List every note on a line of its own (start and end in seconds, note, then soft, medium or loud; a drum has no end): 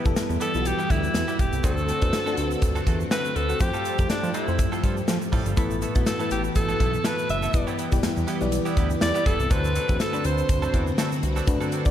0.00 0.37 E3 medium
0.00 1.62 E3 medium
0.00 0.05 G3 medium
0.00 1.62 G3 medium
0.00 0.05 B3 medium
0.00 1.62 B3 medium
0.00 0.05 E4 medium
0.00 1.65 B4 medium
0.05 0.14 E1 medium
0.05 0.36 G3 medium
0.05 0.36 B3 medium
0.05 0.36 E4 medium
0.05 0.37 A4 loud
0.05 muted clean electric guitar stroke medium
0.05 kick loud
0.05 shaker soft
0.16 0.22 E2 soft
0.16 muted clean electric guitar stroke soft
0.16 snare loud
0.16 closed hi-hat medium
0.16 shaker medium
0.29 0.38 E2 medium
0.29 muted clean electric guitar stroke soft
0.29 shaker soft
0.40 0.59 G3 medium
0.40 0.54 B3 medium
0.40 0.53 E4 medium
0.40 0.53 G4 medium
0.40 0.68 A4 loud
0.40 closed hi-hat medium
0.40 shaker soft
0.54 0.73 B1 medium
0.54 1.17 G3 medium
0.54 1.17 B3 medium
0.54 1.17 E4 medium
0.54 0.60 F4 medium
0.54 muted clean electric guitar stroke soft
0.54 shaker soft
0.61 1.20 F#4 medium
0.61 muted clean electric guitar stroke soft
0.65 0.93 G4 loud
0.65 closed hi-hat medium
0.65 shaker medium
0.78 0.88 G3 medium
0.78 0.89 B3 medium
0.78 0.89 E4 medium
0.78 0.90 G4 medium
0.78 shaker soft
0.90 1.09 D2 medium
0.90 1.05 G3 medium
0.90 1.03 B3 medium
0.90 1.03 E4 medium
0.90 1.42 E4 medium
0.90 1.02 G4 medium
0.90 kick medium
0.90 closed hi-hat medium
1.03 muted clean electric guitar stroke soft
1.03 shaker soft
1.14 1.25 E2 loud
1.14 muted clean electric guitar stroke soft
1.14 snare loud
1.14 closed hi-hat loud
1.14 shaker medium
1.28 1.38 G3 medium
1.28 1.38 B3 medium
1.28 1.39 E4 medium
1.28 1.39 G4 medium
1.28 shaker soft
1.39 1.49 E1 medium
1.39 1.64 G4 medium
1.39 muted clean electric guitar stroke soft
1.39 kick medium
1.39 closed hi-hat medium
1.53 1.61 C2 medium
1.53 muted clean electric guitar stroke soft
1.53 closed hi-hat soft
1.53 shaker soft
1.63 1.92 D2 loud
1.63 2.34 D3 medium
1.63 3.59 D3 medium
1.63 1.82 A3 medium
1.63 1.88 A3 medium
1.63 1.83 C4 medium
1.63 3.59 C4 medium
1.63 1.88 D4 medium
1.63 3.59 F#4 loud
1.63 1.88 F#4 medium
1.63 1.83 F#4 medium
1.63 1.83 A4 medium
1.63 2.83 A4 loud
1.63 1.88 C5 medium
1.63 kick loud
1.63 closed hi-hat medium
1.63 shaker medium
1.77 shaker soft
1.88 2.02 A3 medium
1.88 2.01 C4 medium
1.88 2.01 F#4 medium
1.88 2.00 A4 medium
1.88 closed hi-hat medium
1.88 shaker soft
2.01 2.10 E2 medium
2.01 2.17 A3 medium
2.01 2.12 A3 medium
2.01 2.12 C4 medium
2.01 2.17 D4 medium
2.01 2.12 F#4 medium
2.01 2.17 F#4 medium
2.01 2.13 A4 medium
2.01 2.17 B4 medium
2.01 kick medium
2.01 closed hi-hat medium
2.01 shaker soft
2.13 muted clean electric guitar stroke soft
2.13 snare loud
2.13 closed hi-hat medium
2.13 shaker medium
2.26 2.89 A3 medium
2.26 2.36 A3 medium
2.26 2.37 C4 medium
2.26 2.89 D4 medium
2.26 2.32 F4 medium
2.26 2.37 F#4 medium
2.26 2.37 A4 medium
2.26 2.89 A4 loud
2.26 shaker soft
2.33 2.92 F#4 medium
2.37 2.56 D2 medium
2.37 muted clean electric guitar stroke soft
2.37 closed hi-hat medium
2.37 shaker soft
2.51 muted clean electric guitar stroke soft
2.51 shaker soft
2.62 2.81 D2 medium
2.62 muted clean electric guitar stroke soft
2.62 kick medium
2.62 closed hi-hat medium
2.62 shaker medium
2.75 2.85 A3 medium
2.75 2.86 C4 medium
2.75 2.86 F#4 medium
2.75 2.87 A4 medium
2.75 shaker soft
2.86 3.05 E2 medium
2.86 3.02 A3 medium
2.86 3.00 C4 medium
2.86 2.99 F#4 medium
2.86 2.99 A4 medium
2.86 kick medium
2.86 closed hi-hat medium
3.00 muted clean electric guitar stroke soft
3.00 shaker soft
3.11 3.30 A3 medium
3.11 3.24 C4 medium
3.11 3.24 F#4 medium
3.11 3.23 A4 medium
3.11 3.38 B4 loud
3.11 snare loud
3.11 closed hi-hat medium
3.11 shaker medium
3.25 muted clean electric guitar stroke soft
3.25 shaker medium
3.36 3.54 D2 medium
3.36 3.60 A4 loud
3.36 muted clean electric guitar stroke soft
3.36 closed hi-hat medium
3.49 3.60 A3 soft
3.49 3.59 C4 medium
3.49 3.60 F#4 medium
3.49 3.60 A4 medium
3.49 shaker soft
3.60 3.71 F2 loud
3.60 5.55 F3 medium
3.60 3.84 A3 medium
3.60 5.55 A3 medium
3.60 3.84 F4 medium
3.60 5.55 G4 medium
3.60 4.06 G4 loud
3.60 3.84 G4 medium
3.60 3.85 C5 medium
3.60 muted clean electric guitar stroke soft
3.60 kick loud
3.60 closed hi-hat medium
3.60 shaker medium
3.74 3.83 G3 medium
3.74 3.84 C4 medium
3.74 3.84 F4 medium
3.74 3.85 A4 medium
3.74 shaker soft
3.85 4.00 G3 medium
3.85 3.98 C4 medium
3.85 3.98 F4 medium
3.85 3.97 A4 medium
3.85 closed hi-hat medium
3.85 shaker soft
3.98 4.07 F2 medium
3.98 4.29 A3 medium
3.98 4.30 F4 medium
3.98 4.30 G4 medium
3.98 4.30 A4 medium
3.98 kick medium
3.98 closed hi-hat medium
3.98 shaker soft
4.09 4.33 D4 medium
4.09 muted clean electric guitar stroke soft
4.09 snare medium
4.09 closed hi-hat medium
4.09 shaker medium
4.23 4.32 F3 medium
4.23 muted clean electric guitar stroke soft
4.23 shaker soft
4.34 4.53 G3 medium
4.34 4.47 C4 medium
4.34 4.80 E4 medium
4.34 4.47 F4 medium
4.34 4.46 A4 medium
4.34 closed hi-hat medium
4.34 shaker soft
4.47 4.66 F2 medium
4.47 5.10 F3 medium
4.47 5.10 A3 medium
4.47 5.10 G4 medium
4.47 5.11 C5 medium
4.47 muted clean electric guitar stroke soft
4.47 shaker soft
4.59 muted clean electric guitar stroke soft
4.59 kick medium
4.59 closed hi-hat medium
4.59 shaker medium
4.72 4.82 G3 medium
4.72 4.82 C4 medium
4.72 4.83 F4 medium
4.72 4.83 A4 medium
4.72 shaker soft
4.83 5.02 G2 medium
4.83 4.99 G3 medium
4.83 4.97 C4 medium
4.83 4.96 F4 medium
4.83 4.96 A4 medium
4.83 kick medium
4.83 closed hi-hat medium
4.97 muted clean electric guitar stroke soft
4.97 shaker soft
5.08 5.18 F3 loud
5.08 muted clean electric guitar stroke soft
5.08 snare loud
5.08 closed hi-hat medium
5.08 shaker medium
5.21 muted clean electric guitar stroke soft
5.21 shaker medium
5.32 5.43 A2 medium
5.32 5.46 G3 medium
5.32 5.46 C4 medium
5.32 5.45 F4 medium
5.32 5.45 A4 medium
5.32 kick medium
5.32 open hi-hat medium
5.32 shaker soft
5.46 5.54 G1 medium
5.46 5.56 G3 soft
5.46 5.57 C4 soft
5.46 5.57 F4 medium
5.46 5.57 A4 medium
5.46 closed hi-hat soft
5.46 shaker soft
5.57 5.86 A1 loud
5.57 6.27 A2 medium
5.57 7.52 E3 medium
5.57 5.81 A3 medium
5.57 5.76 A3 medium
5.57 7.52 B3 medium
5.57 5.81 B3 medium
5.57 5.76 B3 medium
5.57 5.81 E4 medium
5.57 5.76 E4 medium
5.57 7.52 A4 loud
5.57 5.76 A4 medium
5.57 5.81 B4 loud
5.57 kick loud
5.57 closed hi-hat medium
5.57 shaker medium
5.71 shaker soft
5.81 5.95 A3 medium
5.81 5.95 B3 medium
5.81 5.94 E4 medium
5.81 5.94 A4 medium
5.81 closed hi-hat medium
5.81 shaker soft
5.95 6.04 B1 medium
5.95 6.10 A3 medium
5.95 6.05 A3 medium
5.95 6.10 B3 medium
5.95 6.05 B3 medium
5.95 6.05 E4 medium
5.95 6.10 E4 medium
5.95 6.11 F#4 medium
5.95 6.06 A4 medium
5.95 kick loud
5.95 closed hi-hat medium
5.95 shaker soft
6.06 6.30 A4 medium
6.06 muted clean electric guitar stroke soft
6.06 snare loud
6.06 closed hi-hat medium
6.06 shaker medium
6.19 6.82 A3 medium
6.19 6.29 A3 medium
6.19 6.82 B3 medium
6.19 6.30 B3 medium
6.19 6.30 E4 medium
6.19 6.83 E4 medium
6.19 6.30 A4 medium
6.19 6.83 B4 medium
6.19 shaker soft
6.30 6.50 A1 medium
6.30 6.43 G4 medium
6.30 muted clean electric guitar stroke soft
6.30 closed hi-hat medium
6.30 shaker medium
6.44 muted clean electric guitar stroke soft
6.44 shaker soft
6.55 6.74 A1 loud
6.55 7.07 A4 loud
6.55 muted clean electric guitar stroke soft
6.55 kick medium
6.55 closed hi-hat medium
6.55 shaker medium
6.69 6.78 A3 medium
6.69 6.79 B3 medium
6.69 6.80 E4 medium
6.69 6.80 A4 medium
6.69 shaker soft
6.80 6.99 B1 loud
6.80 6.95 A3 medium
6.80 6.93 B3 medium
6.80 6.92 E4 medium
6.80 6.92 A4 medium
6.80 kick medium
6.80 closed hi-hat medium
6.93 muted clean electric guitar stroke soft
6.93 shaker soft
7.04 7.23 A3 medium
7.04 7.18 B3 medium
7.04 7.17 E4 medium
7.04 7.17 A4 medium
7.04 7.30 B4 medium
7.04 snare loud
7.04 closed hi-hat loud
7.04 shaker medium
7.18 muted clean electric guitar stroke soft
7.18 shaker medium
7.29 7.48 F#1 medium
7.29 7.76 E5 loud
7.29 muted clean electric guitar stroke soft
7.29 closed hi-hat medium
7.42 7.53 A3 soft
7.42 7.53 B3 medium
7.42 7.53 E4 soft
7.42 7.54 A4 medium
7.42 shaker medium
7.53 7.64 E1 loud
7.53 8.24 E3 medium
7.53 9.49 E3 medium
7.53 7.77 G3 medium
7.53 7.78 B3 medium
7.53 9.49 B3 medium
7.53 7.78 E4 medium
7.53 9.49 G4 medium
7.53 7.78 B4 medium
7.53 kick loud
7.53 closed hi-hat medium
7.53 shaker medium
7.67 7.77 G3 medium
7.67 7.77 B3 medium
7.67 7.78 E4 medium
7.67 7.78 G4 medium
7.67 shaker soft
7.78 7.94 G3 medium
7.78 7.92 B3 medium
7.78 7.91 E4 medium
7.78 7.91 G4 medium
7.78 closed hi-hat medium
7.78 shaker soft
7.91 8.01 E1 medium
7.91 8.23 G3 medium
7.91 8.23 B3 medium
7.91 8.23 E4 medium
7.91 8.23 G4 loud
7.91 muted clean electric guitar stroke soft
7.91 kick medium
7.91 closed hi-hat medium
7.91 shaker soft
8.03 8.09 E2 soft
8.03 muted clean electric guitar stroke soft
8.03 snare loud
8.03 closed hi-hat medium
8.03 shaker medium
8.16 8.25 E2 loud
8.16 muted clean electric guitar stroke soft
8.16 shaker soft
8.27 8.46 G3 medium
8.27 8.41 B3 medium
8.27 8.40 E4 medium
8.27 8.40 G4 medium
8.27 closed hi-hat medium
8.27 shaker soft
8.41 8.60 B1 medium
8.41 9.03 G3 medium
8.41 9.04 B3 medium
8.41 9.04 E4 medium
8.41 9.04 D5 medium
8.41 muted clean electric guitar stroke soft
8.41 shaker medium
8.52 muted clean electric guitar stroke soft
8.52 closed hi-hat medium
8.52 shaker medium
8.65 8.75 G3 medium
8.65 8.76 B3 medium
8.65 8.76 E4 medium
8.65 8.77 G4 medium
8.65 shaker soft
8.77 8.95 D2 medium
8.77 8.92 G3 medium
8.77 8.90 B3 medium
8.77 8.89 E4 medium
8.77 8.89 G4 medium
8.77 kick medium
8.77 closed hi-hat medium
8.90 muted clean electric guitar stroke soft
8.90 shaker soft
9.01 9.12 E2 loud
9.01 9.25 D5 loud
9.01 muted clean electric guitar stroke soft
9.01 snare loud
9.01 closed hi-hat loud
9.01 shaker medium
9.15 9.24 G3 medium
9.15 9.25 B3 medium
9.15 9.25 E4 medium
9.15 9.26 G4 medium
9.15 shaker medium
9.26 9.36 E1 medium
9.26 9.41 G3 medium
9.26 9.39 B3 medium
9.26 9.39 E4 medium
9.26 9.38 G4 medium
9.26 9.53 A4 medium
9.26 kick loud
9.26 closed hi-hat medium
9.39 9.48 C2 medium
9.39 muted clean electric guitar stroke soft
9.39 shaker soft
9.50 9.79 D2 loud
9.50 10.20 D3 medium
9.50 11.91 D3 medium
9.50 9.69 F#3 medium
9.50 9.74 A3 medium
9.50 11.91 C4 medium
9.50 9.69 C4 medium
9.50 9.74 D4 medium
9.50 9.70 D4 medium
9.50 11.91 F#4 medium
9.50 9.75 F#4 medium
9.50 9.70 A4 medium
9.50 10.00 B4 loud
9.50 9.75 C5 medium
9.50 kick loud
9.50 closed hi-hat medium
9.50 shaker medium
9.64 shaker soft
9.75 9.89 F#3 medium
9.75 9.88 C4 medium
9.75 9.88 D4 medium
9.75 9.87 A4 medium
9.75 closed hi-hat medium
9.75 shaker soft
9.88 9.97 E2 medium
9.88 9.99 F#3 medium
9.88 10.04 A3 medium
9.88 9.99 C4 medium
9.88 10.04 D4 medium
9.88 9.99 D4 medium
9.88 10.04 F#4 medium
9.88 10.00 A4 medium
9.88 10.04 B4 medium
9.88 kick loud
9.88 shaker soft
10.00 10.27 A4 medium
10.00 muted clean electric guitar stroke soft
10.00 snare loud
10.00 closed hi-hat medium
10.00 shaker medium
10.13 10.23 F#3 medium
10.13 10.75 A3 medium
10.13 10.24 C4 medium
10.13 10.76 D4 medium
10.13 10.24 D4 medium
10.13 10.76 F#4 medium
10.13 10.24 A4 medium
10.13 10.76 B5 medium
10.13 shaker soft
10.24 10.43 D2 medium
10.24 10.74 C5 medium
10.24 closed hi-hat medium
10.24 shaker soft
10.38 muted clean electric guitar stroke medium
10.38 shaker soft
10.49 10.68 D2 medium
10.49 muted clean electric guitar stroke soft
10.49 kick loud
10.49 closed hi-hat medium
10.49 shaker medium
10.62 10.72 F#3 medium
10.62 10.73 C4 medium
10.62 10.73 D4 medium
10.62 10.74 A4 medium
10.62 shaker soft
10.73 10.92 E2 loud
10.73 10.89 F#3 medium
10.73 10.87 C4 medium
10.73 10.86 D4 medium
10.73 10.86 A4 medium
10.73 kick medium
10.73 closed hi-hat medium
10.87 muted clean electric guitar stroke soft
10.87 shaker soft
10.98 11.17 F#3 medium
10.98 11.11 C4 medium
10.98 11.11 D4 medium
10.98 11.11 A4 loud
10.98 snare loud
10.98 closed hi-hat loud
10.98 shaker medium
11.12 muted clean electric guitar stroke soft
11.12 shaker medium
11.23 11.41 C2 medium
11.23 muted clean electric guitar stroke soft
11.23 closed hi-hat medium
11.36 11.46 F#3 soft
11.36 11.46 C4 medium
11.36 11.47 D4 medium
11.36 11.47 A4 medium
11.36 shaker soft
11.47 11.58 D2 loud
11.47 11.91 D3 medium
11.47 11.71 A3 medium
11.47 11.71 D4 medium
11.47 11.71 F#4 medium
11.47 11.72 B4 loud
11.47 muted clean electric guitar stroke soft
11.47 kick loud
11.47 closed hi-hat medium
11.47 shaker medium
11.61 11.70 F#3 medium
11.61 11.71 C4 medium
11.61 11.71 D4 medium
11.61 11.72 A4 medium
11.61 shaker medium
11.72 11.87 F#3 medium
11.72 11.85 C4 medium
11.72 11.85 D4 medium
11.72 11.84 A4 medium
11.72 closed hi-hat medium
11.72 shaker soft
11.85 11.91 D2 medium
11.85 11.91 A3 medium
11.85 11.91 D4 medium
11.85 11.91 F#4 medium
11.85 11.91 D5 loud
11.85 muted clean electric guitar stroke soft
11.85 kick loud
11.85 closed hi-hat medium
11.85 shaker soft